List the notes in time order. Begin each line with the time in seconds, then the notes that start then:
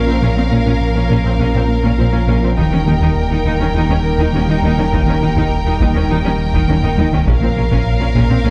Already playing: A#1 F3 A#3 C#4 A#4 F5
0.07 A#2 A#3 C4 F4
0.22 A#1 A#2 A#3 C#4
0.36 A#2 A#3 C4 F4
0.51 A#1 A#2 A#3 C#4 F4
0.66 A#2 A#3 C#4
0.81 A#2
0.95 A#2 C#4 A#4
1.09 A#1 A#2 A#3 C#4
1.24 A#2 C4 A#4
1.39 A#1 A#2 A#3 C#4
1.54 A#2 C4 C#4
1.68 A#3
1.84 A#2 A#3 C#4
1.98 A#1 A#2 A#3 C4 F4
2.12 A#2 A#3 C#4 F4
2.27 A#1 A#2 A#3 C#4
2.41 A#2 A#3 C4 F4
2.57 D#1 D#2 D#3 G3 A#3 D#4 A#4 G5, taiko
2.71 D#3 A#3 C#4
2.86 D#2 D#3 A#3 D#4
3.00 D#2 D#3 D#4
3.16 D#2
3.31 D#2 D#3 D#4
3.45 D#2 D#3 D#4
3.60 D#2 D#3 C#4 D#4
3.74 D#2 D#3 D#4
3.89 D#2 D#3 G3 C#4
4.03 D#3
4.18 D#2 D#3 D#4
4.32 D#2 D#3 A#3 C#4
4.48 D#3 A#3 D#4
4.62 D#2 D#3 D#4
4.77 D#3 A#3 C#4
4.92 D#2 D#3 D#4, taiko
5.06 D#3 A#3 C#4
5.21 D#2 D#3 A#3 D#4
5.35 D#2 D#3 D#4, taiko
5.50 D#2
5.66 D#2 D#3 D#4
5.80 D#2 D#3 D#4, taiko
5.95 D#2 D#3 C#4 D#4
6.10 D#2 D#3 D#4
6.24 D#2 D#3 G3 C#4
6.38 D#3
6.53 D#2 D#3 D#4, taiko
6.68 D#2 D#3 A#3 C#4, taiko high
6.82 D#3 A#3 D#4, taiko low-mid
6.97 D#2 D#3 D#4, taiko high
7.12 D#3 A#3 C#4, taiko low
7.26 A#1 A#2 F3 A#3 C#4 A#4 F5, taiko
7.42 A#2 A#3 C4 F4
7.56 A#1 A#2 A#3 C#4 F4
7.71 A#2 A#3 C#4, taiko
7.86 A#2
8.00 A#2 C#4 A#4
8.15 A#1 A#2 A#3 C#4, taiko
8.30 A#2 C4 A#4
8.44 A#1 A#2 A#3 C#4